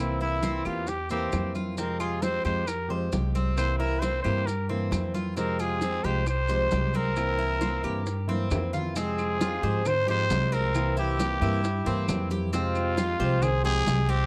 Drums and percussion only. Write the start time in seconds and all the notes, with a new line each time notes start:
0.20 high bongo, high conga
0.43 high bongo, high conga, maracas
0.65 high bongo, claves, maracas
0.87 high bongo, high conga, maracas
1.10 high bongo, high conga, maracas
1.32 high bongo, low bongo, high conga, claves, maracas
1.55 high conga, maracas
1.77 high bongo, high conga, maracas
2.00 high conga, claves, maracas
2.22 high bongo, high conga, maracas
2.45 high conga, maracas
2.67 high bongo, high conga, claves, maracas
2.91 high conga
3.12 high bongo, low bongo, high conga, maracas
3.35 high conga, maracas
3.58 high bongo, claves, maracas
3.80 high bongo, high conga
4.02 high bongo, high conga, maracas
4.25 high bongo, claves, maracas
4.47 high bongo, high conga, maracas
4.69 high bongo, high conga
4.91 high bongo, low bongo, high conga, claves, maracas
5.14 high conga, maracas
5.36 high bongo, high conga, maracas
5.58 high conga, claves, maracas
5.81 high bongo, high conga, maracas
6.03 high conga, maracas
6.26 high bongo, high conga, claves, maracas
6.48 high conga, maracas
6.71 high bongo, low bongo, high conga, maracas
6.94 high conga, maracas
7.16 high bongo, claves, maracas
7.39 high bongo, high conga
7.61 high bongo, high conga, maracas
7.84 high bongo, claves, maracas
8.06 high bongo, high conga, maracas
8.29 high bongo, high conga
8.51 high bongo, low bongo, low conga, claves, maracas
8.74 low conga, maracas
8.96 high bongo, high conga, maracas
9.18 high bongo, high conga, claves, maracas
9.41 high bongo, high conga, maracas
9.63 high conga, maracas
9.86 high bongo, high conga, low conga, claves, maracas
10.08 high bongo, high conga, maracas
10.30 high bongo, low bongo, high conga, maracas
10.53 high bongo, maracas
10.75 high bongo, high conga, claves, maracas
10.97 high bongo, high conga, maracas
11.19 high bongo, high conga, maracas
11.42 high conga, claves, maracas
11.64 high bongo, high conga, maracas
11.86 high bongo, high conga, maracas
12.08 high bongo, low bongo, high conga, claves, maracas
12.30 high bongo, high conga, maracas
12.53 high bongo, maracas
12.75 high bongo, high conga, claves, maracas
12.97 high bongo, high conga, maracas
13.20 high conga, maracas
13.42 high bongo, high conga, low conga, claves, maracas
13.64 high bongo, high conga, maracas
13.87 high bongo, low bongo, high conga, maracas
14.09 high bongo, maracas